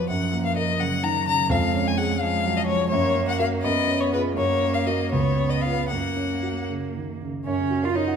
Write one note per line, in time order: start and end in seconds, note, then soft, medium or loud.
0.00 0.11 F2 medium
0.00 0.12 F3 soft
0.00 0.81 F3 soft
0.00 0.12 F#3 soft
0.00 0.11 B3 soft
0.00 0.12 G#4 soft
0.10 1.47 F#2 medium
0.10 0.44 F#5 medium
0.33 0.70 A#3 soft
0.46 0.56 F5 medium
0.57 0.94 A#4 soft
0.57 0.82 D#5 medium
0.79 1.17 C#3 soft
0.79 1.52 F#3 medium
0.79 1.06 F#5 medium
1.03 1.26 D#3 soft
1.03 1.27 A#5 medium
1.27 1.50 C#3 soft
1.27 1.51 A#5 medium
1.50 2.88 F2 medium
1.50 2.21 G#3 medium
1.50 1.89 F5 medium
1.74 2.12 C#4 medium
1.88 2.00 G#5 medium
1.98 2.36 G#4 medium
1.98 2.22 F#5 medium
2.21 2.59 F3 soft
2.21 2.95 G#3 medium
2.21 2.58 F5 medium
2.45 2.69 F#3 soft
2.57 2.66 D#5 medium
2.67 2.93 F3 soft
2.67 2.89 C#5 medium
2.90 3.62 F#2 medium
2.90 3.66 A#3 medium
2.90 3.26 C#5 medium
3.16 3.54 C#4 medium
3.28 3.39 F#5 medium
3.39 3.61 F#4 soft
3.39 3.61 A#4 soft
3.39 3.47 F5 medium
3.63 4.35 F#2 medium
3.63 4.37 B3 medium
3.63 4.02 D#5 medium
3.88 4.27 C#4 medium
4.01 4.13 C#5 medium
4.13 4.35 F4 soft
4.13 4.35 G#4 medium
4.13 4.21 B4 medium
4.37 5.10 F#2 medium
4.37 5.13 A#3 medium
4.37 4.76 C#5 loud
4.62 5.02 C#4 soft
4.74 4.88 F5 medium
4.87 5.10 F#4 soft
4.87 5.10 A#4 soft
4.87 5.11 D#5 medium
5.12 5.88 C#2 medium
5.12 5.92 B3 medium
5.12 5.51 C#5 medium
5.38 5.80 C#4 soft
5.50 5.63 D#5 medium
5.62 5.88 F4 soft
5.62 5.88 B4 soft
5.62 5.88 F5 medium
5.89 7.42 F#2 soft
5.89 7.25 A#3 soft
5.89 6.67 F#5 medium
6.17 6.58 C#4 soft
6.43 6.84 F#4 soft
6.69 7.10 C#3 soft
6.96 7.21 D#3 soft
7.22 7.47 C#3 soft
7.45 8.16 F#2 soft
7.45 7.86 C#4 medium
7.45 7.84 C#5 medium
7.59 7.78 C#3 soft
7.71 7.90 F#4 soft
7.83 7.97 F4 medium
7.83 8.02 A#4 soft
7.83 7.93 F5 soft
7.94 8.16 D#4 medium
7.94 8.14 C#5 soft
7.94 8.16 D#5 soft
8.08 8.16 F#5 soft